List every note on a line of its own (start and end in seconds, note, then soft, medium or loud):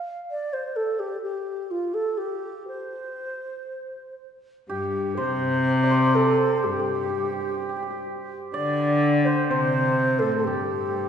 0.31 0.55 D5 medium
0.53 0.78 C5 medium
0.76 1.01 A4 medium
1.00 1.22 G4 medium
1.22 1.72 G4 medium
1.71 1.95 F4 medium
1.94 2.19 A4 medium
2.18 2.67 G4 medium
2.68 4.15 C5 medium
4.69 5.20 G2 medium
4.69 5.15 G4 medium
4.69 6.64 G4 medium
5.17 6.66 C3 medium
5.17 6.17 C5 medium
5.17 5.91 C5 medium
5.83 8.29 D5 medium
5.91 8.55 C5 medium
6.15 6.65 A4 medium
6.64 8.07 G2 medium
6.64 8.06 G4 medium
6.64 6.71 G4 medium
6.72 6.79 G4 soft
6.79 6.88 G4 soft
6.88 6.95 G4 soft
6.95 7.03 G4 soft
7.03 7.10 G4 soft
7.10 7.17 G4 soft
7.18 7.24 G4 soft
7.25 7.32 G4 soft
7.32 7.40 G4 soft
7.40 7.47 G4 soft
7.47 7.54 G4 soft
7.54 7.62 G4 soft
7.62 7.69 G4 soft
7.69 7.76 G4 soft
7.76 7.82 G4 soft
7.83 7.90 G4 soft
7.90 10.47 G4 soft
8.54 9.51 D3 medium
8.54 9.27 D5 medium
8.54 11.00 D5 medium
9.25 9.48 C5 medium
9.25 9.50 C5 medium
9.48 10.23 C3 medium
9.48 10.21 C5 medium
9.48 11.09 C5 medium
10.19 10.47 A2 medium
10.19 10.37 A4 medium
10.19 10.39 A4 medium
10.38 10.46 A4 medium
10.38 11.09 A4 soft
10.45 11.09 G2 medium
10.45 11.09 G4 medium